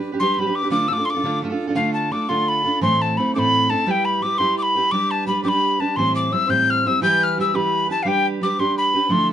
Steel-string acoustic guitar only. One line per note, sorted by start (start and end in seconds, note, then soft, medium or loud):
0.00 0.12 D4 soft
0.00 0.11 G4 soft
0.00 0.11 B4 soft
0.12 0.19 D4 soft
0.12 0.20 G4 soft
0.12 0.19 B4 medium
0.20 0.37 G3 medium
0.20 0.38 D4 medium
0.20 0.40 G4 medium
0.20 0.40 B4 medium
0.39 0.47 G3 medium
0.39 0.47 D4 medium
0.39 0.47 G4 medium
0.39 0.45 B4 medium
0.46 0.64 D4 soft
0.46 0.63 G4 soft
0.46 0.61 B4 medium
0.63 0.71 D4 soft
0.63 0.71 G4 soft
0.63 0.71 B4 medium
0.70 0.90 D3 medium
0.70 0.88 A3 medium
0.70 0.89 D4 medium
0.70 0.90 F4 medium
0.70 0.90 A4 medium
0.89 0.98 A3 medium
0.89 0.99 D4 medium
0.89 0.98 F4 medium
0.89 0.96 A4 medium
0.97 1.16 D4 soft
0.97 1.15 F4 soft
0.97 1.13 A4 soft
1.14 1.24 D4 soft
1.14 1.24 F4 soft
1.14 1.23 A4 medium
1.23 1.43 D3 medium
1.23 1.41 A3 medium
1.23 1.42 D4 medium
1.23 1.43 F4 medium
1.23 1.44 A4 medium
1.42 1.51 A3 medium
1.42 1.52 D4 medium
1.42 1.51 F4 medium
1.42 1.48 A4 medium
1.50 1.69 D4 medium
1.50 1.68 F4 medium
1.50 1.66 A4 medium
1.67 1.75 D4 medium
1.67 1.76 F4 medium
1.67 1.76 A4 medium
1.75 2.12 D3 medium
1.75 2.10 A3 medium
1.75 2.11 D4 medium
1.75 2.12 F4 medium
1.75 2.13 A4 medium
2.11 2.28 A3 soft
2.11 2.29 D4 medium
2.11 2.27 F4 medium
2.11 2.28 A4 medium
2.29 2.66 D3 medium
2.29 2.66 A3 medium
2.29 2.66 D4 soft
2.29 2.64 F4 medium
2.29 2.63 A4 medium
2.64 2.81 D4 soft
2.64 2.81 F4 soft
2.64 2.81 A4 soft
2.81 3.17 A2 medium
2.81 3.17 E3 medium
2.81 3.16 A3 medium
2.81 3.18 C4 medium
2.81 3.18 E4 medium
2.81 3.19 A4 medium
3.18 3.34 A3 medium
3.18 3.35 C4 medium
3.18 3.35 E4 medium
3.18 3.34 A4 medium
3.35 3.72 A2 medium
3.35 3.72 E3 medium
3.35 3.71 A3 medium
3.35 3.71 C4 medium
3.35 3.69 E4 medium
3.35 3.68 A4 medium
3.69 3.86 A3 soft
3.69 3.87 C4 soft
3.69 3.86 E4 medium
3.69 3.86 A4 medium
3.86 4.22 G3 medium
3.86 4.23 E4 medium
3.86 4.24 G4 medium
3.86 4.23 B4 medium
4.22 4.39 G3 soft
4.22 4.39 E4 medium
4.22 4.39 G4 medium
4.22 4.38 B4 medium
4.39 4.92 G3 soft
4.39 4.76 E4 medium
4.39 4.76 G4 medium
4.39 4.74 B4 medium
4.75 4.93 E4 soft
4.75 4.92 G4 medium
4.75 4.92 B4 soft
4.92 5.27 G3 medium
4.92 5.27 D4 medium
4.92 5.29 G4 medium
4.92 5.29 B4 medium
5.27 5.44 G3 medium
5.27 5.44 D4 medium
5.27 5.43 G4 medium
5.27 5.42 B4 medium
5.44 5.97 G3 soft
5.44 5.81 D4 medium
5.44 5.81 G4 medium
5.44 5.78 B4 medium
5.79 5.97 D4 soft
5.79 5.97 G4 soft
5.79 5.96 B4 medium
5.96 6.32 A2 medium
5.96 6.33 E3 medium
5.96 6.31 G3 medium
5.96 6.32 C4 medium
5.96 6.33 E4 medium
5.96 6.33 C5 medium
6.32 6.48 G3 medium
6.32 6.48 C4 medium
6.32 6.47 E4 medium
6.32 6.46 C5 medium
6.47 6.85 A2 soft
6.47 6.85 E3 soft
6.47 6.87 G3 medium
6.47 6.85 C4 soft
6.47 6.84 E4 soft
6.47 6.84 C5 medium
6.86 7.01 G3 soft
6.86 7.02 C4 medium
6.86 7.01 E4 soft
6.86 7.02 C5 medium
7.01 7.37 E3 medium
7.01 7.37 G3 medium
7.01 7.38 E4 medium
7.01 7.38 G4 medium
7.01 7.38 B4 medium
7.38 7.54 G3 medium
7.38 7.54 E4 soft
7.38 7.53 G4 medium
7.38 7.53 B4 medium
7.54 7.91 E3 medium
7.54 7.91 G3 medium
7.54 7.90 E4 medium
7.54 7.88 G4 medium
7.54 7.87 B4 medium
7.88 8.05 E4 soft
7.88 8.05 G4 soft
7.88 8.05 B4 medium
8.05 8.40 G3 medium
8.05 8.42 D4 medium
8.05 8.42 G4 medium
8.05 8.43 B4 medium
8.41 8.58 G3 medium
8.41 8.59 D4 medium
8.41 8.59 G4 medium
8.41 8.58 B4 medium
8.59 8.96 G3 soft
8.59 8.96 D4 soft
8.59 8.95 G4 medium
8.59 8.93 B4 soft
8.94 9.09 D4 soft
8.94 9.10 G4 soft
8.94 9.11 B4 medium
9.09 9.33 D3 medium
9.09 9.33 F3 medium
9.09 9.33 A3 medium
9.09 9.33 D4 medium
9.09 9.33 E4 medium
9.09 9.33 A4 medium